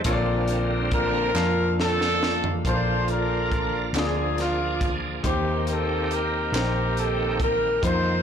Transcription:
Already playing: french horn section C5
0.04 fingered electric bass A#1, grand piano A#2 A#3 F4 A4 C#5, tonewheel organ D3 A#3 C4, french horn section F3 D4 F4, kick, closed hi-hat
0.13 grand piano D5
0.48 closed hi-hat
0.91 horn section D4 F4 A#4, kick, closed hi-hat
1.34 fingered electric bass F2, grand piano A#3 F4 F5 A5, snare, clap
1.79 tonewheel organ D3 C4 A4, horn section D4 F4 A4, snare
2.01 snare
2.23 snare
2.44 floor tom
2.65 fingered electric bass A#1, grand piano A#2 A#3 F4 C5 A5, tonewheel organ F3 A#3 D4 F4, horn section F4 A4 C5, kick, closed hi-hat
2.74 grand piano D5
3.08 horn section D4 F4 A#4, closed hi-hat
3.52 kick, closed hi-hat
3.93 fingered electric bass D2, grand piano D3 A#3 F4 G#4 D5, tonewheel organ F3 A#3 D4 G#4, horn section F4, clap, closed hi-hat
3.97 horn section G#4, snare
4.38 horn section F4, snare, closed hi-hat
4.81 kick, closed hi-hat
5.23 fingered electric bass D#2, grand piano D#3 A#3 D#4 G4 C5, tonewheel organ D#3 A#3 C4 F#4, horn section A#3 C4, kick, closed hi-hat
5.27 horn section G4, tonewheel organ G4
5.67 horn section A4, closed hi-hat
6.11 horn section G4 A#4, closed hi-hat
6.52 fingered electric bass A#1, grand piano A#3 D#4 G4 C5, clap, closed hi-hat
6.56 snare
6.97 horn section A4, closed hi-hat
7.40 horn section A#4, kick, closed hi-hat
7.81 fingered electric bass F2, tonewheel organ D#3 A#3 C4 E4, grand piano A#3 D#4 F4 C5, horn section D#4 C5, kick, closed hi-hat
7.88 tonewheel organ F4

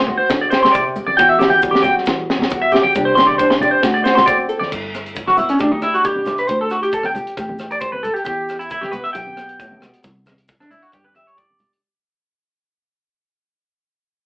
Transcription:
Already playing: fingered electric bass D2, nylon-string guitar G3 C4
0.07 nylon-string guitar F#4, muted clean electric guitar stroke, low conga
0.17 clean electric guitar C5
0.30 nylon-string guitar A2, fingered electric bass D3, kick, snare, maracas
0.41 clean electric guitar D5
0.50 nylon-string guitar G4, clean electric guitar C5, snare, maracas
0.63 clean electric guitar C6, snare, low conga
0.71 nylon-string guitar C3, clean electric guitar D5, kick, maracas
0.96 low conga, maracas
1.07 clean electric guitar D5, high conga
1.17 nylon-string guitar E2 F#4, fingered electric bass E2, clean electric guitar G5, kick, maracas
1.29 clean electric guitar E5
1.39 fingered electric bass E2, nylon-string guitar B3, clean electric guitar G4, snare, high conga, maracas
1.50 clean electric guitar G5, high conga
1.62 nylon-string guitar E3 G3, kick, maracas
1.71 clean electric guitar G4, high conga
1.75 snare
1.83 nylon-string guitar F#4, clean electric guitar G5, high conga, low conga, maracas
1.98 snare
2.05 nylon-string guitar B2, fingered electric bass E3, kick, snare, maracas
2.30 nylon-string guitar B3, snare
2.39 snare, low conga
2.50 nylon-string guitar E3 F#4, kick, maracas
2.62 clean electric guitar E5
2.72 clean electric guitar G4, snare, low conga, maracas
2.83 clean electric guitar G5, high conga
2.95 fingered electric bass C2, nylon-string guitar C3 G3 D4 G4, kick, maracas
3.05 clean electric guitar C5
3.15 fingered electric bass C2, nylon-string guitar G4, clean electric guitar C6, snare, high conga, maracas
3.27 clean electric guitar D5, high conga
3.38 nylon-string guitar G3 D4, clean electric guitar C5, kick, maracas
3.50 clean electric guitar C6, snare
3.61 nylon-string guitar G4, clean electric guitar D5, high conga, low conga, maracas
3.71 clean electric guitar C5
3.82 fingered electric bass D2, nylon-string guitar F#4, muted nylon-string guitar stroke, kick, snare, maracas
3.94 clean electric guitar D5
4.04 nylon-string guitar F#4, clean electric guitar C5, snare, maracas
4.15 clean electric guitar C6, snare, low conga
4.26 nylon-string guitar A3 C4, clean electric guitar D5, kick, maracas
4.49 nylon-string guitar A4, maracas
4.59 clean electric guitar D5, snare, high conga
4.70 fingered electric bass G1, nylon-string guitar G2, kick, crash, maracas
4.94 cross-stick, closed hi-hat, maracas
5.06 closed hi-hat
5.15 nylon-string guitar D3, kick, closed hi-hat, maracas
5.27 clean electric guitar F#4, cross-stick, high conga
5.36 nylon-string guitar B3, clean electric guitar E4, closed hi-hat, low conga, maracas
5.49 clean electric guitar C#4, nylon-string guitar D4, closed hi-hat
5.59 fingered electric bass D2, nylon-string guitar G2 G4, clean electric guitar D4, kick, cross-stick, closed hi-hat, maracas
5.72 clean electric guitar D#4, high conga
5.81 nylon-string guitar D4, clean electric guitar E4, cross-stick, closed hi-hat, maracas
5.94 clean electric guitar F#4, closed hi-hat
6.02 nylon-string guitar B2, clean electric guitar G4, kick, closed hi-hat, maracas
6.16 high conga
6.25 nylon-string guitar C3, cross-stick, closed hi-hat, low conga, maracas
6.38 clean electric guitar B4, closed hi-hat
6.48 fingered electric bass D2, nylon-string guitar D3, clean electric guitar C5, kick, closed hi-hat, maracas
6.61 clean electric guitar A4
6.70 clean electric guitar F#4, cross-stick, closed hi-hat, maracas
6.83 clean electric guitar G4, closed hi-hat
6.92 nylon-string guitar G3, clean electric guitar A4, kick, closed hi-hat, maracas
7.03 clean electric guitar G5, cross-stick, high conga
7.14 nylon-string guitar G4, closed hi-hat, low conga, maracas
7.27 closed hi-hat
7.37 fingered electric bass A1, nylon-string guitar A2 G4, kick, cross-stick, closed hi-hat, maracas
7.49 high conga
7.59 nylon-string guitar G4, cross-stick, closed hi-hat, maracas
7.71 clean electric guitar D5, closed hi-hat
7.81 nylon-string guitar G3, clean electric guitar C5, kick, closed hi-hat, maracas
7.92 clean electric guitar B4, high conga
8.03 clean electric guitar A4, closed hi-hat, low conga, maracas
8.14 clean electric guitar G4, closed hi-hat
8.25 nylon-string guitar E2, fingered electric bass E2, clean electric guitar G4, kick, closed hi-hat, maracas
8.49 cross-stick, closed hi-hat, maracas
8.59 clean electric guitar E4, closed hi-hat
8.70 nylon-string guitar E3, clean electric guitar E4, kick, closed hi-hat, maracas
8.81 clean electric guitar G4, cross-stick, high conga
8.91 nylon-string guitar B3, clean electric guitar B4, closed hi-hat, low conga, maracas
9.04 clean electric guitar E5, closed hi-hat
9.13 fingered electric bass B1, nylon-string guitar B2 G4, clean electric guitar G5, kick, cross-stick, closed hi-hat, maracas
9.27 high conga
9.37 nylon-string guitar B3, cross-stick, closed hi-hat, maracas
9.49 closed hi-hat
9.59 nylon-string guitar A2, kick, closed hi-hat, maracas
9.72 high conga
9.80 nylon-string guitar B2, cross-stick, closed hi-hat, low conga, maracas
9.94 closed hi-hat
10.03 fingered electric bass C2, nylon-string guitar C3, kick, closed hi-hat, maracas
10.26 cross-stick, closed hi-hat, high conga, maracas
10.38 closed hi-hat
10.48 nylon-string guitar G3, kick, closed hi-hat, maracas
10.60 clean electric guitar D4, cross-stick, high conga
10.71 nylon-string guitar D4, clean electric guitar E4, closed hi-hat, low conga, maracas
10.82 clean electric guitar F#4, closed hi-hat
10.92 nylon-string guitar G2 D4, fingered electric bass G2, clean electric guitar G4, kick, cross-stick, closed hi-hat, maracas
11.04 clean electric guitar B4, high conga
11.15 nylon-string guitar G4, clean electric guitar E5, cross-stick, closed hi-hat, high conga, maracas
11.27 clean electric guitar C#5, closed hi-hat
11.36 nylon-string guitar G3, clean electric guitar D5, kick, closed hi-hat, maracas
11.51 high conga
11.59 closed hi-hat, low conga, maracas
11.73 closed hi-hat

